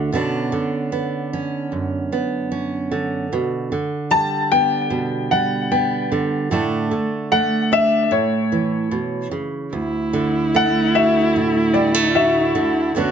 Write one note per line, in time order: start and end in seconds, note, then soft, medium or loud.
0.00 0.13 D2 medium
0.00 0.12 D3 medium
0.12 0.52 B2 medium
0.12 0.51 D3 soft
0.12 0.92 B3 soft
0.12 1.32 C#4 soft
0.12 6.52 D4 medium
0.52 2.90 D3 soft
0.92 2.11 B3 soft
1.33 2.50 C#4 soft
1.72 3.27 F#2 soft
2.12 3.27 B3 soft
2.52 3.26 C#4 soft
2.91 3.71 D3 medium
3.33 3.72 B2 medium
3.72 6.10 D3 medium
4.11 5.30 G3 medium
4.11 4.52 A5 medium
4.52 5.70 B3 soft
4.52 5.34 G5 medium
4.90 6.11 B2 soft
5.31 6.52 G3 soft
5.31 5.72 F#5 medium
5.72 6.47 B3 soft
5.72 6.28 G5 medium
6.12 6.50 D3 medium
6.51 6.91 A2 medium
6.51 6.90 D3 soft
6.51 7.31 A3 soft
6.51 7.71 D4 soft
6.91 8.12 D3 soft
7.32 8.94 A3 soft
7.32 7.73 F#5 medium
7.72 8.12 D4 soft
7.72 8.14 E5 medium
8.11 8.91 A2 medium
8.11 9.29 C#5 medium
8.52 9.68 E3 soft
8.91 9.31 B2 soft
9.31 9.72 C#3 medium
9.73 12.93 D2 medium
9.73 12.99 E4 medium
10.13 12.54 D3 medium
10.55 11.74 A3 soft
10.55 10.96 F#5 medium
10.95 12.14 F#4 soft
10.95 11.77 E5 medium
11.36 12.55 A2 soft
11.73 11.94 G3 soft
11.73 12.15 D5 medium
11.94 12.95 A3 soft
12.15 12.90 F#4 medium
12.15 12.71 E5 medium
12.55 12.95 D3 medium
12.95 13.11 D2 medium
12.95 13.11 D3 soft
12.95 13.11 B3 medium
12.95 13.11 C#4 soft
12.95 13.11 D4 soft
12.95 13.11 F#4 medium